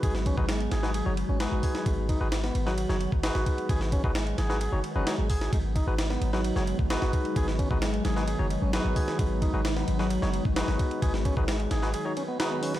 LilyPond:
<<
  \new Staff \with { instrumentName = "Tine electric piano" } { \time 4/4 \key gis \minor \tempo 4 = 131 <dis' fis' gis' b'>8. <dis' fis' gis' b'>16 r8. <dis' fis' gis' b'>16 r16 <dis' fis' gis' cis''>16 r8 <dis' fis' gis' b'>4~ | <dis' fis' gis' b'>8. <dis' fis' gis' b'>16 r8. <dis' fis' gis' b'>16 r16 <dis' fis' gis' cis''>16 r8 <dis' fis' gis' b'>4~ | <dis' fis' gis' b'>8. <dis' fis' gis' b'>16 r8. <dis' fis' gis' b'>16 r16 <dis' fis' gis' cis''>16 r16 <dis' fis' gis' b'>16 <dis' fis' gis' cis''>16 r8. | r8. <dis' fis' gis' b'>16 r8. <dis' fis' gis' b'>16 r16 <dis' fis' gis' cis''>16 r8 <dis' fis' gis' b'>4~ |
<dis' fis' gis' b'>8. <dis' fis' gis' b'>16 r8. <dis' fis' gis' b'>16 r16 <dis' fis' gis' cis''>16 r8 <dis' fis' gis' b'>4~ | <dis' fis' gis' b'>8. <dis' fis' gis' b'>16 r8. <dis' fis' gis' b'>16 r16 <dis' fis' gis' cis''>16 r8 <dis' fis' gis' b'>4~ | <dis' fis' gis' b'>8. <dis' fis' gis' b'>16 r8. <dis' fis' gis' b'>16 r16 <dis' fis' gis' cis''>16 r8 <dis' fis' gis' b'>4 | }
  \new Staff \with { instrumentName = "Tonewheel organ" } { \time 4/4 \key gis \minor gis'16 r16 cis'16 r16 gis8 gis'8 gis'16 r8 cis'16 gis8 gis'8 | gis16 r16 dis'16 r8 b8 fis4 r8 fis'16 r8 | gis'16 r16 cis'16 r16 gis8 gis'8 gis'16 r8 cis'16 gis8 gis'8 | gis16 r16 dis'16 r8 b8 fis4 r8 fis'16 r8 |
gis'16 r16 cis'16 r16 gis8 gis'8 gis'16 r8 cis'16 gis8 gis'8 | gis16 r16 dis'16 r8 b8 fis4 r8 fis'16 r8 | gis'16 r16 cis'16 r16 gis8 gis'8 gis'16 r16 cis'16 b16 dis'16 b16 cis'16 r16 | }
  \new Staff \with { instrumentName = "Analog synth pad" } { \time 4/4 \key gis \minor << { fis'1~ | fis'1~ | fis'1 | dis'1~ |
dis'1~ | dis'1~ | dis'1 | } \\ { <dis fis gis b>1~ | <dis fis gis b>1~ | <dis fis gis b>1~ | <dis fis gis b>1~ |
<dis fis gis b>1~ | <dis fis gis b>1~ | <dis fis gis b>1 | } >> }
  \new Staff \with { instrumentName = "808-style bass" } { \clef bass \time 4/4 \key gis \minor gis,,8. gis,,8. gis,,8. fis,,8 gis,,8 gis,,16 r8 | gis,,8. gis,,8. gis,,8. fis,,8 gis,,8 gis,,16 r8 | gis,,8. gis,,8. gis,,8. fis,,16 r16 fis,,16 r16 gis,,8. | gis,,8. gis,,8. gis,,8. fis,,8 gis,,8 gis,,16 r8 |
gis,,8. gis,,8. gis,,8. fis,,8 gis,,8 gis,,16 r8 | gis,,8. gis,,8. gis,,8. fis,,8 gis,,8 gis,,16 r8 | gis,,8. gis,,8. gis,,8 r2 | }
  \new DrumStaff \with { instrumentName = "Drums" } \drummode { \time 4/4 <bd cymr>16 sn16 <bd cymr>16 bd16 <cymr sn>16 cymr16 <cymr sn>16 sn16 cymr8 cymr8 <cymr sn>8 <hho bd>16 sn16 | <bd cymr>8 <bd cymr>8 <cymr sn>16 sn16 cymr16 sn16 cymr16 sn16 cymr16 bd16 <cymr sn>16 sn16 <bd cymr>16 cymr16 | <bd cymr>16 sn16 <bd cymr>16 bd16 <cymr sn>16 cymr16 <cymr sn>16 sn16 cymr8 cymr8 <cymr sn>8 <hho bd>16 sn16 | <bd cymr>8 <bd cymr>8 <cymr sn>16 sn16 cymr16 sn16 cymr16 sn16 cymr16 bd16 <cymr sn>16 sn16 <bd cymr>16 cymr16 |
<bd cymr>16 sn16 <bd cymr>16 bd16 <cymr sn>16 cymr16 <cymr sn>16 sn16 cymr8 cymr8 <cymr sn>8 <hho bd>16 sn16 | <bd cymr>8 <bd cymr>8 <cymr sn>16 sn16 cymr16 sn16 cymr16 sn16 cymr16 bd16 <cymr sn>16 sn16 <bd cymr>16 cymr16 | <bd cymr>16 sn16 <bd cymr>16 bd16 <cymr sn>16 cymr16 <cymr sn>16 sn16 cymr8 cymr8 <cymr sn>8 hho16 sn16 | }
>>